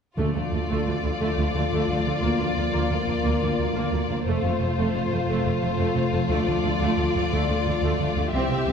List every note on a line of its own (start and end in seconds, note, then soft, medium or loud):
0.17 0.25 D2 soft
0.17 0.65 D3 soft
0.17 4.22 F3 soft
0.17 0.34 A3 soft
0.17 4.21 F4 soft
0.17 2.19 A4 soft
0.17 4.22 D5 soft
0.35 0.42 D2 soft
0.35 0.42 A3 soft
0.52 0.59 D2 soft
0.52 0.60 A3 soft
0.68 0.76 D2 soft
0.68 0.86 A3 soft
0.86 0.93 D2 soft
0.86 0.94 A3 soft
1.03 1.10 D2 soft
1.03 1.10 A3 soft
1.20 1.27 D2 soft
1.20 1.36 A3 soft
1.37 1.44 D2 soft
1.37 1.44 A3 soft
1.54 1.61 D2 soft
1.54 1.62 A3 soft
1.71 1.78 D2 soft
1.71 1.79 D2 soft
1.71 1.88 A3 soft
1.88 1.95 D2 soft
1.88 1.96 D2 soft
1.88 1.96 A3 soft
2.05 2.12 D2 soft
2.05 2.13 D2 soft
2.05 2.13 A3 soft
2.21 2.29 D2 medium
2.21 2.30 D2 soft
2.21 2.38 A#3 medium
2.21 4.22 A#4 medium
2.39 2.46 D2 soft
2.39 2.47 D2 soft
2.39 2.46 A#3 soft
2.56 2.63 D2 soft
2.56 2.64 D2 soft
2.56 2.63 A#3 soft
2.72 2.80 D2 soft
2.72 2.81 D2 soft
2.72 2.89 A#3 soft
2.89 2.97 D2 soft
2.89 2.98 D2 soft
2.89 2.97 A#3 soft
3.07 3.14 D2 soft
3.07 3.15 D2 soft
3.07 3.14 A#3 soft
3.23 3.31 D2 soft
3.23 3.32 D2 soft
3.23 3.40 A#3 soft
3.41 3.48 D2 soft
3.41 3.49 D2 soft
3.41 3.48 A#3 soft
3.58 3.65 D2 soft
3.58 3.66 A#3 soft
3.74 3.81 D2 soft
3.74 3.82 D2 soft
3.74 3.91 A#3 soft
3.91 3.98 D2 soft
3.91 3.99 D2 soft
3.91 3.99 A#3 soft
4.09 4.16 D2 soft
4.09 4.16 A#3 soft
4.25 4.33 F1 medium
4.25 4.33 F2 medium
4.25 8.15 F3 medium
4.25 4.43 A3 soft
4.25 8.28 F4 soft
4.25 8.15 A4 soft
4.25 6.26 C5 soft
4.43 4.50 F1 soft
4.43 4.51 F2 soft
4.43 4.51 A3 soft
4.60 4.67 F1 soft
4.60 4.67 F2 soft
4.60 4.68 A3 soft
4.77 4.84 F1 soft
4.77 4.84 F2 medium
4.77 4.93 A3 medium
4.94 5.01 F1 soft
4.94 5.01 F2 soft
4.94 5.02 A3 soft
5.11 5.18 F1 soft
5.11 5.18 F2 soft
5.11 5.18 A3 soft
5.28 5.34 F1 medium
5.28 5.36 F2 medium
5.28 5.43 A3 medium
5.45 5.52 F1 soft
5.45 5.52 F2 soft
5.45 5.51 A3 soft
5.62 5.68 F1 soft
5.62 5.69 F2 soft
5.62 5.69 A3 soft
5.78 5.85 F1 soft
5.78 5.86 F2 medium
5.78 5.94 A3 soft
5.95 6.03 F1 soft
5.95 6.02 F2 soft
5.95 6.02 A3 soft
6.12 6.19 F1 soft
6.12 6.19 F2 soft
6.12 6.20 A3 soft
6.29 6.36 D2 medium
6.29 6.46 A3 medium
6.29 8.32 D5 soft
6.46 6.53 D2 soft
6.46 6.55 A3 soft
6.63 6.70 D2 soft
6.63 6.71 A3 soft
6.80 6.87 D2 medium
6.80 6.97 A3 medium
6.97 7.04 D2 soft
6.97 7.05 A3 soft
7.14 7.21 D2 soft
7.14 7.22 A3 soft
7.31 7.38 D2 medium
7.31 7.39 D2 medium
7.31 7.48 A3 medium
7.48 7.55 D2 soft
7.48 7.56 D2 soft
7.48 7.56 A3 soft
7.64 7.71 D2 soft
7.64 7.72 D2 soft
7.64 7.73 A3 soft
7.81 7.88 D2 medium
7.81 7.89 D2 medium
7.81 7.98 A3 soft
7.98 8.05 D2 soft
7.98 8.06 D2 soft
7.98 8.07 A3 soft
8.15 8.22 D2 soft
8.15 8.23 D2 soft
8.15 8.23 A3 soft
8.32 8.39 C2 medium
8.32 8.72 E3 medium
8.32 8.49 C4 medium
8.32 8.72 G4 soft
8.32 8.72 E5 medium
8.49 8.56 C2 soft
8.49 8.57 C2 soft
8.49 8.57 C4 soft
8.66 8.72 C2 soft
8.66 8.72 C4 soft